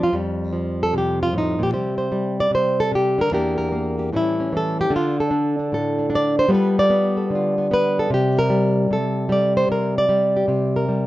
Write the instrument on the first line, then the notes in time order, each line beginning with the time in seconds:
nylon-string guitar
Already playing: F3 G3
0.03 F4
0.13 F2 G3
0.53 F3
0.83 A4
0.93 C3
0.98 G4
1.23 F4
1.33 A2
1.38 D#4
1.59 A#2
1.63 G4
1.72 C3 G3 G4 C5
1.98 C5
2.12 G3
2.40 D5
2.51 C3
2.55 C5
2.80 A4
2.92 C3 G4
3.18 D3 A#4
3.31 E2 A#3 D4 G4 A#4
3.58 A#4
3.72 A#3
3.99 G4
4.13 A2 E3 G3 C#4 E4
4.40 C#4
4.53 E3
4.57 A4
4.81 G4
4.90 D3 D4
4.96 F4
5.20 A4
5.31 D4
5.59 D4
5.72 A2 A4
5.99 D4
6.10 D4
6.15 D5
6.39 C5
6.48 G3 B3 F4 A4
6.54 B4
6.79 D5
6.90 B3
7.17 A4
7.30 D3
7.35 F4
7.58 B3
7.71 B3 B4
7.99 A4
8.10 C3 G4
8.39 A#4
8.50 G3
8.91 C3 A4
9.29 G3 D5
9.57 C5
9.69 C3 A#4
9.98 D5
10.09 G3
10.37 G4
10.48 C3 G4
10.76 A#4
10.89 G3